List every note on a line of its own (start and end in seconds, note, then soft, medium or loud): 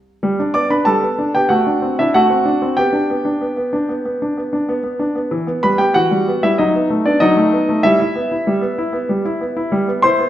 0.23 0.39 G3 medium
0.39 0.57 D4 soft
0.54 0.73 B3 soft
0.54 0.70 D5 medium
0.54 0.71 D6 medium
0.70 0.88 D4 soft
0.70 0.87 B4 soft
0.70 0.88 B5 medium
0.85 1.03 G3 soft
0.85 1.32 A4 soft
0.85 1.31 A5 medium
1.03 1.20 B3 soft
1.19 1.36 D4 soft
1.35 1.51 B3 soft
1.35 1.51 G4 soft
1.35 1.51 G5 medium
1.49 1.67 A3 soft
1.49 1.96 F#4 soft
1.49 1.98 F#5 medium
1.67 1.84 D4 soft
1.82 2.00 C4 soft
1.99 2.17 D4 soft
1.99 2.15 E4 soft
1.99 2.15 E5 medium
2.14 2.31 A3 soft
2.14 2.75 F#4 medium
2.14 2.75 F#5 medium
2.30 2.48 C4 soft
2.45 2.63 D4 soft
2.62 2.79 C4 soft
2.77 2.94 B3 soft
2.77 4.96 G4 soft
2.77 5.00 G5 medium
2.93 3.11 D4 soft
3.10 3.27 B3 soft
3.25 3.43 D4 soft
3.41 3.56 B3 soft
3.57 3.75 B3 soft
3.73 3.91 D4 soft
3.89 4.04 B3 soft
4.05 4.21 B3 soft
4.22 4.39 D4 soft
4.37 4.54 B3 soft
4.53 4.70 D4 soft
4.69 4.82 B3 medium
4.84 5.01 B3 soft
4.99 5.17 D4 soft
5.15 5.32 B3 soft
5.31 5.47 E3 soft
5.47 5.65 B3 soft
5.63 5.81 G3 soft
5.63 5.79 B4 medium
5.63 5.80 B5 medium
5.78 5.96 B3 soft
5.78 5.95 G4 soft
5.78 5.95 G5 medium
5.94 6.11 E3 soft
5.94 6.40 F#4 medium
5.94 6.43 F#5 medium
6.11 6.28 G3 soft
6.28 6.45 B3 soft
6.43 6.59 G3 soft
6.43 6.59 E4 medium
6.43 6.59 E5 medium
6.58 6.75 F#3 soft
6.58 7.03 D#4 soft
6.58 6.87 D#5 medium
6.75 6.92 B3 soft
6.90 7.07 A3 soft
7.06 7.23 B3 soft
7.06 7.21 D4 soft
7.06 7.22 D5 medium
7.20 7.37 F#3 medium
7.20 7.81 D#4 medium
7.20 7.84 D#5 medium
7.37 7.54 A3 soft
7.52 7.69 B3 soft
7.69 7.85 A3 soft
7.83 8.00 G3 medium
7.83 7.98 E4 medium
7.83 10.01 E5 medium
8.00 8.17 E4 soft
8.16 8.32 B3 soft
8.32 8.48 E4 soft
8.47 8.63 G3 soft
8.61 8.79 B3 soft
8.78 8.95 E4 soft
8.93 9.10 B3 soft
9.09 9.25 G3 soft
9.25 9.42 E4 soft
9.41 9.58 B3 soft
9.57 9.74 E4 soft
9.72 9.88 G3 medium
9.88 10.06 B3 soft
10.02 10.22 E4 soft
10.02 10.29 C5 medium
10.02 10.29 C6 medium
10.19 10.29 B3 soft